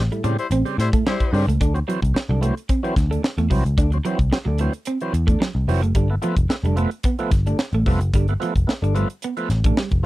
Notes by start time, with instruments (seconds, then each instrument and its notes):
0.12 tonewheel organ A2, clean electric guitar G3, closed hi-hat
0.24 picked electric bass A2, tonewheel organ C#3 G3 C4, clean electric guitar A3, closed hi-hat
0.38 horn section G3 E4 C5, closed hi-hat
0.51 picked electric bass A1, clean electric guitar C4, closed hi-hat
0.65 tonewheel organ C#3 G3 C4, closed hi-hat
0.78 picked electric bass A2, horn section G3 E4 C5, muted clean electric guitar stroke, snare, closed hi-hat
0.93 tonewheel organ A2, clean electric guitar A3, kick, closed hi-hat
1.06 clean electric guitar G3, horn section G3 E4 C5, snare
1.20 kick, closed hi-hat
1.33 picked electric bass G2, tonewheel organ C#3 G3 C4, muted clean electric guitar stroke, open hi-hat
1.47 picked electric bass C#2, clean electric guitar A3, closed hi-hat
1.61 picked electric bass D2, tonewheel organ D3, clean electric guitar D4, kick, closed hi-hat
1.74 tonewheel organ F#3 C4, muted clean electric guitar stroke, closed hi-hat
1.88 tonewheel organ E3 F#3 C4, clean electric guitar F#3, closed hi-hat
2.02 picked electric bass C2, kick, closed hi-hat
2.14 tonewheel organ F#3 C4, muted picked electric bass stroke, muted clean electric guitar stroke, snare
2.29 picked electric bass C2, tonewheel organ D3, clean electric guitar F#3
2.41 tonewheel organ E3 F#3 C4, clean electric guitar A3, closed hi-hat
2.57 closed hi-hat
2.69 clean electric guitar C4, kick, closed hi-hat
2.83 tonewheel organ E3 F#3 C4, muted clean electric guitar stroke, closed hi-hat
2.96 picked electric bass D2, kick, snare, closed hi-hat
3.11 tonewheel organ D3, clean electric guitar A3, closed hi-hat
3.23 muted clean electric guitar stroke, snare
3.38 picked electric bass E2, clean electric guitar A3, closed hi-hat
3.50 picked electric bass C2, tonewheel organ E3 F#3 C4, clean electric guitar F#3, kick, open hi-hat
3.65 picked electric bass C#2, closed hi-hat
3.78 picked electric bass D2, tonewheel organ D3, clean electric guitar D4, kick, closed hi-hat
3.92 tonewheel organ F#3 C4, muted clean electric guitar stroke, closed hi-hat
4.05 tonewheel organ E3 F#3 C4, clean electric guitar F#3, closed hi-hat
4.19 picked electric bass C2, kick, closed hi-hat
4.31 tonewheel organ F#3 C4, muted clean electric guitar stroke, muted picked electric bass stroke, snare
4.45 picked electric bass D2, tonewheel organ D3, clean electric guitar F#3
4.58 tonewheel organ E3 F#3 C4, clean electric guitar A3, closed hi-hat
4.73 closed hi-hat
4.85 clean electric guitar C4, closed hi-hat
5.00 tonewheel organ E3 F#3 C4, closed hi-hat
5.13 picked electric bass E2, muted clean electric guitar stroke, closed hi-hat
5.27 tonewheel organ D3, clean electric guitar A3, kick, closed hi-hat
5.40 clean electric guitar F#3, snare
5.55 picked electric bass C2
5.68 picked electric bass F1, tonewheel organ E3 F#3 C4, muted clean electric guitar stroke, open hi-hat
5.81 picked electric bass F#1, clean electric guitar A3, closed hi-hat
5.95 picked electric bass G1, tonewheel organ G2 D3, clean electric guitar G3, kick, closed hi-hat
6.10 tonewheel organ A3 B3, muted clean electric guitar stroke
6.22 tonewheel organ F3 A3 B3, clean electric guitar F3, closed hi-hat
6.37 picked electric bass F1, kick, closed hi-hat
6.49 tonewheel organ A3 B3, muted clean electric guitar stroke, snare
6.63 picked electric bass F1, tonewheel organ G2 D3, clean electric guitar G3, closed hi-hat
6.76 tonewheel organ F3 A3 B3, clean electric guitar A3, closed hi-hat
6.91 closed hi-hat
7.03 clean electric guitar B3, kick, closed hi-hat
7.19 tonewheel organ F3 A3 B3, muted clean electric guitar stroke, closed hi-hat
7.31 picked electric bass G1, kick, snare, closed hi-hat
7.46 tonewheel organ G2 D3, clean electric guitar A3, closed hi-hat
7.59 muted clean electric guitar stroke, snare
7.73 picked electric bass A1, clean electric guitar A3, closed hi-hat
7.86 picked electric bass F1, tonewheel organ F3 A3 B3, clean electric guitar G3, kick, open hi-hat
8.00 picked electric bass F#1, closed hi-hat
8.13 picked electric bass G1, tonewheel organ G2 D3, clean electric guitar G3, kick, closed hi-hat
8.28 tonewheel organ A3 B3, muted clean electric guitar stroke, closed hi-hat
8.40 tonewheel organ F3 A3 B3, clean electric guitar F3, closed hi-hat
8.56 picked electric bass F1, kick, closed hi-hat
8.67 tonewheel organ A3 B3, muted picked electric bass stroke, muted clean electric guitar stroke, snare
8.82 picked electric bass G1, tonewheel organ G2 D3, clean electric guitar G3, closed hi-hat
8.95 tonewheel organ F3 A3 B3, clean electric guitar G3, closed hi-hat
9.10 closed hi-hat
9.22 clean electric guitar B3, closed hi-hat
9.37 tonewheel organ F3 A3 B3, closed hi-hat
9.50 picked electric bass A1, muted clean electric guitar stroke, snare, closed hi-hat
9.64 tonewheel organ G2 D3, clean electric guitar A3, kick, closed hi-hat
9.77 clean electric guitar G3, snare
9.91 picked electric bass F1, kick, closed hi-hat